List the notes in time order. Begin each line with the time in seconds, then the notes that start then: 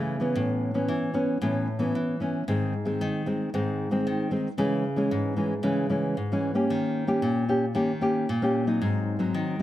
Already playing: C#3 E3 A3 C#4
0.20 E3 B3 C#4
0.35 A2
0.74 E3 B3 C#4
0.88 E3
1.14 E3 B3 C#4
1.42 A2 E3 B3 C#4
1.79 E3 B3 C#4
1.95 E3
2.20 E3 B3 C#4
2.48 G#2 D#3 G#3 C4
2.85 D#3 G#3 C4
3.01 D#3
3.26 D#3 G#3 C4
3.54 G#2 D#3 G#3 C4
3.91 D#3 G#3 C4
4.07 D#3
4.31 D#3 G#3 C4
4.58 C#3 E3 G#3 C#4
4.96 E3 G#3 C#4
5.11 G#2
5.37 E3 G#3 C#4
5.63 C#3 E3 G#3 C#4
5.89 E3 G#3 C#4
6.17 G#2
6.32 E3 G#3 C#4
6.55 A#3 C#4 G4
6.70 D#3
7.07 A#3 C#4 G4
7.22 A#2
7.49 A#3 C#4 G4
7.75 D#3 A#3 C#4 G4
8.01 A#3 C#4 G4
8.29 A#2
8.42 A#3 C#4 G4
8.67 F#3 C4 D#4
8.82 G#2
9.19 F#3 C4 D#4
9.34 D#3
9.59 F#3